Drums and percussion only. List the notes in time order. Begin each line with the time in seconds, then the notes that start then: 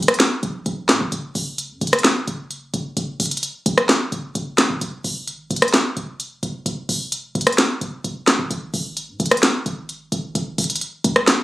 0.03 closed hi-hat
0.08 cross-stick, closed hi-hat
0.14 closed hi-hat
0.20 snare, clap, closed hi-hat
0.43 closed hi-hat
0.66 closed hi-hat
0.89 snare, clap, closed hi-hat
1.12 closed hi-hat
1.35 open hi-hat
1.58 closed hi-hat
1.81 closed hi-hat
1.87 closed hi-hat
1.93 cross-stick, closed hi-hat
1.99 closed hi-hat
2.04 snare, clap, closed hi-hat
2.27 closed hi-hat
2.51 closed hi-hat
2.74 closed hi-hat
2.97 closed hi-hat
3.20 closed hi-hat, open hi-hat
3.26 closed hi-hat
3.31 closed hi-hat
3.37 closed hi-hat
3.43 closed hi-hat
3.66 closed hi-hat
3.78 cross-stick, closed hi-hat
3.89 snare, clap, closed hi-hat
4.12 closed hi-hat
4.35 closed hi-hat
4.58 snare, clap, closed hi-hat
4.81 closed hi-hat
5.04 open hi-hat
5.27 closed hi-hat
5.51 closed hi-hat
5.56 closed hi-hat
5.62 cross-stick, closed hi-hat
5.68 closed hi-hat
5.74 snare, clap, closed hi-hat
5.97 closed hi-hat
6.20 closed hi-hat
6.43 closed hi-hat
6.66 closed hi-hat
6.89 open hi-hat
7.12 closed hi-hat
7.35 closed hi-hat
7.41 closed hi-hat
7.47 cross-stick, closed hi-hat
7.52 closed hi-hat
7.58 snare, clap, closed hi-hat
7.81 closed hi-hat
8.04 closed hi-hat
8.27 snare, clap, closed hi-hat
8.51 closed hi-hat
8.74 open hi-hat
8.97 closed hi-hat
9.20 closed hi-hat
9.26 closed hi-hat
9.31 cross-stick, closed hi-hat
9.37 closed hi-hat
9.43 snare, clap, closed hi-hat
9.66 closed hi-hat
9.89 closed hi-hat
10.12 closed hi-hat
10.35 closed hi-hat
10.58 closed hi-hat, open hi-hat
10.64 closed hi-hat
10.70 closed hi-hat
10.76 closed hi-hat
10.81 closed hi-hat
11.04 closed hi-hat
11.16 cross-stick, closed hi-hat
11.27 snare, clap, closed hi-hat